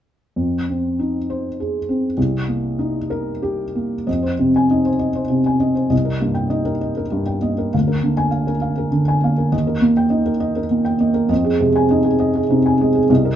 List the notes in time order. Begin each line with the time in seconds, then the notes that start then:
0.36 F2
0.69 C4
0.99 D#4
1.30 C5
1.60 G#4
1.89 C4
2.17 C2
2.48 A#3
2.79 D#4
3.10 A#4
3.42 G4
3.75 A#3
4.07 F2 D#5
4.23 C5
4.39 C3 C4
4.56 G#5
4.71 D#4 D#5
4.85 C5
4.99 D#5
5.15 C5
5.30 C3
5.46 G#5
5.60 C4 D#5
5.75 C5
5.90 C2 D#5
6.05 A#4
6.20 G2 A#3
6.34 G5
6.50 D#4 D#5
6.65 A#4
6.81 D#5
6.97 A#4
7.12 G2
7.26 G5
7.42 A#3 D#5
7.58 A#4
7.74 D2 F5
7.87 A#4
8.03 D3 A#3
8.17 G#5
8.31 F5
8.47 A#4
8.62 F5
8.78 A#4
8.91 D3
9.08 G#5
9.24 A#3 F5
9.38 A#4
9.52 D#2 D#5
9.67 A#4
9.81 A#2 A#3
9.97 G5
10.10 D#4 D#5
10.26 A#4
10.40 D#5
10.56 A#4
10.70 A#2
10.85 G5
11.00 A#3 D#5
11.14 A#4
11.29 F2 D#5
11.44 G#4
11.60 C3 G#3
11.76 G#5
11.91 D#4 D#5
12.04 G#4
12.20 D#5
12.35 G#4
12.50 C3 D#4
12.66 G#5
12.81 G#3 D#5
12.95 G#4
13.09 C2 D#5
13.25 A#4